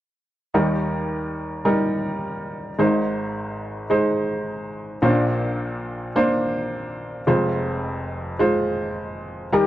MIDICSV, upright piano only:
0, 0, Header, 1, 2, 480
1, 0, Start_track
1, 0, Key_signature, -3, "major"
1, 0, Tempo, 561430
1, 464, Time_signature, 4, 2, 24, 8
1, 8265, End_track
2, 0, Start_track
2, 0, Title_t, "Upright piano"
2, 0, Program_c, 0, 0
2, 464, Note_on_c, 0, 39, 43
2, 464, Note_on_c, 0, 55, 53
2, 464, Note_on_c, 0, 63, 47
2, 466, Note_on_c, 0, 51, 49
2, 467, Note_on_c, 0, 70, 57
2, 618, Control_c, 0, 64, 127
2, 1363, Note_off_c, 0, 63, 0
2, 1364, Note_off_c, 0, 55, 0
2, 1365, Note_off_c, 0, 70, 0
2, 1411, Note_on_c, 0, 55, 55
2, 1411, Note_on_c, 0, 63, 53
2, 1412, Note_on_c, 0, 70, 58
2, 2317, Note_off_c, 0, 55, 0
2, 2317, Note_off_c, 0, 63, 0
2, 2317, Note_off_c, 0, 70, 0
2, 2350, Note_off_c, 0, 39, 0
2, 2351, Note_off_c, 0, 51, 0
2, 2381, Note_on_c, 0, 56, 52
2, 2383, Note_on_c, 0, 44, 48
2, 2386, Note_on_c, 0, 63, 52
2, 2390, Note_on_c, 0, 72, 58
2, 2391, Note_on_c, 0, 32, 47
2, 2395, Control_c, 0, 64, 0
2, 2558, Control_c, 0, 64, 127
2, 3282, Note_off_c, 0, 56, 0
2, 3285, Note_off_c, 0, 63, 0
2, 3286, Note_off_c, 0, 72, 0
2, 3333, Note_on_c, 0, 56, 58
2, 3339, Note_on_c, 0, 63, 52
2, 3340, Note_on_c, 0, 72, 63
2, 4238, Note_off_c, 0, 56, 0
2, 4241, Note_off_c, 0, 63, 0
2, 4242, Note_off_c, 0, 72, 0
2, 4270, Note_off_c, 0, 44, 0
2, 4274, Note_off_c, 0, 32, 0
2, 4292, Note_on_c, 0, 34, 49
2, 4295, Note_on_c, 0, 58, 57
2, 4296, Note_on_c, 0, 46, 51
2, 4298, Note_on_c, 0, 61, 40
2, 4299, Note_on_c, 0, 72, 61
2, 4315, Control_c, 0, 64, 0
2, 4351, Note_on_c, 0, 62, 52
2, 4357, Note_off_c, 0, 61, 0
2, 4484, Control_c, 0, 64, 127
2, 5199, Note_off_c, 0, 58, 0
2, 5201, Note_off_c, 0, 72, 0
2, 5227, Note_off_c, 0, 62, 0
2, 5264, Note_on_c, 0, 58, 59
2, 5264, Note_on_c, 0, 62, 54
2, 5267, Note_on_c, 0, 72, 68
2, 6164, Note_off_c, 0, 58, 0
2, 6164, Note_off_c, 0, 62, 0
2, 6165, Note_off_c, 0, 72, 0
2, 6184, Note_off_c, 0, 34, 0
2, 6186, Note_off_c, 0, 46, 0
2, 6215, Note_on_c, 0, 56, 56
2, 6215, Note_on_c, 0, 65, 53
2, 6216, Note_on_c, 0, 29, 53
2, 6217, Note_on_c, 0, 41, 52
2, 6221, Note_on_c, 0, 72, 62
2, 6236, Control_c, 0, 64, 0
2, 6371, Control_c, 0, 64, 127
2, 7119, Note_off_c, 0, 56, 0
2, 7119, Note_off_c, 0, 65, 0
2, 7122, Note_off_c, 0, 72, 0
2, 7176, Note_on_c, 0, 56, 61
2, 7183, Note_on_c, 0, 65, 52
2, 7184, Note_on_c, 0, 72, 65
2, 8079, Note_off_c, 0, 56, 0
2, 8083, Note_off_c, 0, 65, 0
2, 8083, Note_off_c, 0, 72, 0
2, 8106, Note_off_c, 0, 29, 0
2, 8106, Note_off_c, 0, 41, 0
2, 8143, Note_on_c, 0, 39, 42
2, 8143, Note_on_c, 0, 55, 60
2, 8144, Note_on_c, 0, 51, 43
2, 8149, Note_on_c, 0, 63, 55
2, 8150, Note_on_c, 0, 70, 70
2, 8155, Control_c, 0, 64, 0
2, 8265, Note_off_c, 0, 39, 0
2, 8265, Note_off_c, 0, 51, 0
2, 8265, Note_off_c, 0, 55, 0
2, 8265, Note_off_c, 0, 63, 0
2, 8265, Note_off_c, 0, 70, 0
2, 8265, End_track
0, 0, End_of_file